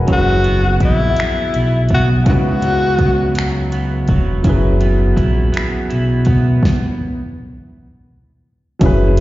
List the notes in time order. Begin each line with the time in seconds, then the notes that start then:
Already playing: G#4 A#4 D#5 F#5 G#5
0.05 F#1 F#3 C#4 E4, kick, closed hi-hat
0.10 F#4 G#4 A#4
0.18 B4
0.44 B3, closed hi-hat
0.80 A#1 E4, kick, closed hi-hat
0.85 E4
1.16 B1 B3, finger snap, closed hi-hat
1.54 B1 E4, closed hi-hat
1.89 B3, kick, closed hi-hat
1.94 F#4
2.24 C#2 C#3 C#4 D#4 E4, kick, closed hi-hat
2.29 F#4 B4
2.62 F#3, closed hi-hat
2.99 B3, kick, closed hi-hat
3.35 F#3, finger snap, closed hi-hat
3.72 B3, closed hi-hat
4.08 E1 F#3, kick, closed hi-hat
4.43 F#1 F#3 C#4 E4, kick, closed hi-hat
4.48 G#4 B4
4.80 B3, closed hi-hat
5.16 A#1 E4, kick, closed hi-hat
5.52 B1 B3, closed hi-hat
5.57 finger snap
5.89 B1 E4, closed hi-hat
6.25 B3, kick, closed hi-hat
6.63 kick, snare
8.79 F#1 F#3 C#4 E4, kick, closed hi-hat
8.84 G#4 B4